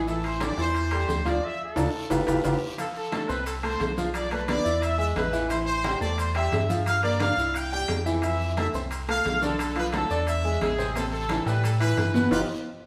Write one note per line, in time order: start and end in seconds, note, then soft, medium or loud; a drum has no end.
0.00 0.52 A1 medium
0.07 0.35 E3 medium
0.07 0.35 E4 medium
0.07 0.24 A4 medium
0.07 0.35 E5 medium
0.07 high conga soft
0.07 long guiro medium
0.07 maracas medium
0.24 0.40 C5 medium
0.24 high conga soft
0.24 high timbale medium
0.24 maracas soft
0.40 0.55 G3 medium
0.40 0.55 G4 medium
0.40 0.55 A4 medium
0.40 0.58 D5 medium
0.40 high conga loud
0.40 high timbale medium
0.40 short guiro medium
0.40 maracas medium
0.57 1.05 E2 medium
0.57 0.85 E3 medium
0.57 0.86 E4 medium
0.57 1.23 C5 loud
0.57 0.86 E5 medium
0.57 high conga soft
0.57 short guiro medium
0.57 maracas soft
0.74 high conga soft
0.74 high timbale medium
0.74 long guiro medium
0.74 maracas medium
0.91 1.20 G3 medium
0.91 1.20 G4 medium
0.91 1.20 A4 medium
0.91 high conga soft
0.91 high timbale medium
0.91 maracas soft
1.08 1.40 D2 medium
1.08 high conga medium
1.08 low timbale medium
1.08 short guiro medium
1.08 maracas medium
1.25 1.39 F3 medium
1.25 1.39 F4 medium
1.25 1.43 D5 medium
1.25 1.39 F5 medium
1.25 high conga medium
1.25 high timbale medium
1.25 short guiro medium
1.25 maracas soft
1.45 1.61 E5 loud
1.62 2.59 A4 medium
1.76 1.89 D2 loud
1.76 1.87 D4 medium
1.76 1.87 F4 medium
1.76 1.87 A4 medium
1.76 low conga loud
1.76 high timbale loud
1.76 long guiro loud
1.76 maracas loud
2.10 2.23 G1 medium
2.10 2.21 F4 medium
2.10 2.21 G4 medium
2.10 2.21 B4 medium
2.10 low conga medium
2.10 high timbale medium
2.10 long guiro loud
2.10 maracas loud
2.27 2.40 G1 loud
2.27 2.38 F4 loud
2.27 2.38 G4 loud
2.27 2.38 B4 medium
2.27 low conga medium
2.27 high timbale loud
2.27 long guiro loud
2.27 maracas medium
2.44 2.57 G1 loud
2.44 2.55 F4 medium
2.44 2.55 G4 medium
2.44 2.77 G4 medium
2.44 2.55 B4 medium
2.44 low conga medium
2.44 high timbale medium
2.44 long guiro loud
2.44 maracas loud
2.78 3.06 F3 medium
2.78 3.06 F4 medium
2.78 2.87 A4 medium
2.78 3.06 F5 medium
2.78 high conga soft
2.78 high timbale medium
2.78 long guiro medium
2.78 maracas medium
2.96 3.28 A4 medium
2.96 high conga soft
2.96 maracas soft
3.12 3.26 A3 medium
3.12 3.26 A4 medium
3.12 3.26 A5 medium
3.12 high conga medium
3.12 high timbale medium
3.12 low timbale medium
3.12 short guiro medium
3.12 maracas soft
3.29 3.77 C2 loud
3.29 3.57 C4 medium
3.29 3.46 B4 medium
3.29 3.57 C5 medium
3.29 3.57 C6 medium
3.29 high conga soft
3.29 short guiro medium
3.29 maracas medium
3.46 3.54 A4 medium
3.46 high conga soft
3.46 high timbale medium
3.46 long guiro medium
3.46 maracas medium
3.63 3.91 A3 medium
3.63 3.91 A4 medium
3.63 3.95 C5 medium
3.63 3.91 A5 medium
3.63 high conga soft
3.63 high timbale medium
3.63 maracas soft
3.80 4.60 B1 medium
3.80 high conga medium
3.80 high timbale medium
3.80 low timbale medium
3.80 short guiro medium
3.80 maracas soft
3.97 4.25 F3 medium
3.97 4.26 F4 medium
3.97 4.26 F5 medium
3.97 high conga medium
3.97 short guiro medium
3.97 maracas medium
4.14 4.30 D5 medium
4.14 high conga soft
4.14 high timbale medium
4.14 long guiro medium
4.14 maracas medium
4.31 4.46 A3 medium
4.31 4.46 A4 medium
4.31 4.48 B4 medium
4.31 4.46 A5 medium
4.31 high conga soft
4.31 high timbale medium
4.31 maracas soft
4.48 4.62 B3 medium
4.48 4.62 B4 medium
4.48 4.80 D5 medium
4.48 4.62 B5 medium
4.48 high conga loud
4.48 high timbale loud
4.48 low timbale medium
4.48 short guiro medium
4.48 maracas soft
4.64 5.13 E2 medium
4.64 4.93 E4 medium
4.64 4.93 E5 medium
4.64 4.93 E6 medium
4.64 short guiro medium
4.64 maracas medium
4.82 4.97 E5 medium
4.82 high conga soft
4.82 high timbale medium
4.82 long guiro medium
4.82 maracas medium
4.98 5.27 G#3 medium
4.98 5.27 G#4 medium
4.98 5.06 E5 medium
4.98 5.27 G#5 medium
4.98 high conga soft
4.98 maracas soft
5.16 5.96 A1 medium
5.16 5.48 B4 medium
5.16 high conga medium
5.16 high timbale medium
5.16 low timbale medium
5.16 short guiro medium
5.16 maracas soft
5.33 5.47 E3 medium
5.33 5.47 E4 medium
5.33 5.47 E5 medium
5.33 high conga soft
5.33 short guiro medium
5.33 maracas medium
5.50 5.78 E3 medium
5.50 5.78 E4 medium
5.50 5.58 C5 medium
5.50 5.79 E5 medium
5.50 high conga soft
5.50 high timbale medium
5.50 long guiro medium
5.50 maracas medium
5.66 5.99 C5 loud
5.66 high conga soft
5.66 maracas soft
5.84 5.98 G3 medium
5.84 5.98 G4 medium
5.84 5.99 G5 medium
5.84 high conga loud
5.84 high timbale loud
5.84 low timbale medium
5.84 short guiro medium
5.84 maracas soft
6.01 6.49 E2 medium
6.01 6.29 A3 medium
6.01 6.29 A4 medium
6.01 6.18 D5 medium
6.01 6.29 A5 medium
6.01 high conga soft
6.01 short guiro medium
6.01 maracas medium
6.18 6.35 C5 medium
6.18 high conga soft
6.18 high timbale medium
6.18 long guiro medium
6.18 maracas medium
6.35 6.63 G3 medium
6.35 6.64 G4 medium
6.35 6.68 E5 medium
6.35 6.64 G5 medium
6.35 high conga soft
6.35 high timbale loud
6.35 maracas soft
6.52 7.32 G2 medium
6.52 high conga medium
6.52 high timbale medium
6.52 low timbale medium
6.52 short guiro medium
6.52 maracas soft
6.69 6.98 F3 medium
6.69 6.98 F4 medium
6.69 6.98 F5 medium
6.69 high conga medium
6.69 short guiro medium
6.69 maracas medium
6.86 7.03 F5 loud
6.86 high conga soft
6.86 high timbale loud
6.86 long guiro medium
6.86 maracas medium
7.03 7.17 A#3 medium
7.03 7.18 A#4 medium
7.03 7.20 D5 medium
7.03 7.18 A#5 medium
7.03 high conga soft
7.03 high timbale medium
7.03 maracas soft
7.20 7.35 D4 medium
7.20 7.35 D5 medium
7.20 7.53 F5 loud
7.20 7.35 D6 medium
7.20 high conga loud
7.20 high timbale medium
7.20 low timbale medium
7.20 short guiro medium
7.20 maracas soft
7.37 7.85 C2 medium
7.37 7.66 E4 medium
7.37 7.66 E5 medium
7.37 7.66 E6 medium
7.37 short guiro medium
7.37 maracas medium
7.54 7.71 G5 loud
7.54 high conga soft
7.54 high timbale medium
7.54 maracas medium
7.72 8.00 G3 medium
7.72 8.00 G4 medium
7.72 8.04 G5 loud
7.72 8.01 G5 medium
7.72 high conga soft
7.72 maracas soft
7.88 8.68 F2 medium
7.88 high conga medium
7.88 high timbale medium
7.88 low timbale medium
7.88 short guiro medium
7.88 maracas soft
8.06 8.20 E3 medium
8.06 8.20 E4 medium
8.06 8.20 E5 medium
8.06 high conga soft
8.06 short guiro medium
8.06 maracas medium
8.22 8.51 E3 medium
8.22 8.51 E4 medium
8.22 8.51 E5 medium
8.22 8.56 E5 medium
8.22 high conga soft
8.22 high timbale medium
8.22 long guiro medium
8.22 maracas medium
8.41 high conga soft
8.41 maracas soft
8.57 8.71 A3 medium
8.57 8.72 A4 medium
8.57 8.66 E5 medium
8.57 8.72 A5 medium
8.57 high conga loud
8.57 high timbale medium
8.57 low timbale medium
8.57 short guiro medium
8.57 maracas soft
8.74 9.22 C2 loud
8.74 9.02 C4 medium
8.74 9.02 C5 medium
8.74 9.03 C6 medium
8.74 high conga soft
8.74 short guiro medium
8.74 maracas medium
8.91 high conga soft
8.91 high timbale medium
8.91 long guiro medium
8.91 maracas medium
9.08 9.36 A3 medium
9.08 9.36 A4 medium
9.08 9.41 F5 loud
9.08 9.36 A5 medium
9.08 high conga soft
9.08 high timbale medium
9.08 maracas soft
9.25 10.05 B1 loud
9.25 high conga medium
9.25 high timbale medium
9.25 low timbale medium
9.25 short guiro medium
9.25 maracas soft
9.42 9.70 D3 medium
9.42 9.70 D4 medium
9.42 9.75 A4 medium
9.42 9.70 D5 medium
9.42 high conga medium
9.42 short guiro medium
9.42 maracas medium
9.59 high conga soft
9.59 high timbale loud
9.59 long guiro medium
9.59 maracas medium
9.76 9.90 F3 medium
9.76 9.90 F4 medium
9.76 9.85 B4 medium
9.76 9.90 F5 medium
9.76 high conga soft
9.76 high timbale medium
9.76 maracas soft
9.92 10.07 A3 medium
9.92 10.07 A4 medium
9.92 10.25 A4 medium
9.92 10.07 A5 medium
9.92 high conga loud
9.92 high timbale medium
9.92 low timbale medium
9.92 short guiro medium
9.92 maracas soft
10.10 10.58 E2 loud
10.10 10.38 D4 medium
10.10 10.38 D5 medium
10.10 10.39 D6 medium
10.10 short guiro medium
10.10 maracas medium
10.27 10.59 E5 loud
10.27 high conga soft
10.27 high timbale medium
10.27 long guiro medium
10.27 maracas medium
10.44 10.72 G#3 medium
10.44 10.72 G#4 medium
10.44 10.73 G#5 medium
10.44 high conga soft
10.44 maracas soft
10.61 11.41 A1 medium
10.61 10.93 G#4 medium
10.61 high conga medium
10.61 high timbale medium
10.61 low timbale medium
10.61 short guiro medium
10.61 maracas soft
10.78 10.92 C3 medium
10.78 10.92 C4 medium
10.78 10.92 C5 medium
10.78 high conga soft
10.78 short guiro medium
10.78 maracas medium
10.95 11.23 C3 medium
10.95 11.23 C4 medium
10.95 11.04 A4 medium
10.95 11.24 C5 medium
10.95 high conga soft
10.95 high timbale medium
10.95 long guiro medium
10.95 maracas medium
11.12 11.44 A4 loud
11.12 high conga soft
11.12 maracas soft
11.29 11.43 E3 medium
11.29 11.43 E4 medium
11.29 11.44 E5 medium
11.29 high conga loud
11.29 high timbale medium
11.29 low timbale medium
11.29 short guiro medium
11.29 maracas soft
11.46 11.93 A2 loud
11.46 11.74 G3 medium
11.46 11.74 G4 medium
11.46 11.63 B4 medium
11.46 11.74 G5 medium
11.46 high conga soft
11.46 short guiro medium
11.46 maracas medium
11.64 11.71 A4 medium
11.64 high conga soft
11.64 high timbale medium
11.64 long guiro medium
11.64 maracas medium
11.80 12.08 E3 medium
11.80 12.08 E4 medium
11.80 12.12 B4 loud
11.80 12.08 E5 medium
11.80 high conga soft
11.80 high timbale medium
11.80 maracas soft
11.97 12.29 G2 loud
11.97 high conga medium
11.97 high timbale medium
11.97 low timbale medium
11.97 short guiro medium
11.97 maracas soft
12.14 12.28 B2 medium
12.14 12.28 B3 medium
12.14 12.30 B4 medium
12.14 12.29 B4 loud
12.14 high conga medium
12.14 short guiro medium
12.14 maracas medium
12.31 12.44 G1 loud
12.31 12.42 D#4 medium
12.31 12.42 F4 medium
12.31 12.39 F4 medium
12.31 12.42 G4 loud
12.31 12.39 G4 medium
12.31 12.39 B4 loud
12.31 high conga loud
12.31 high timbale loud
12.31 long guiro loud
12.31 maracas loud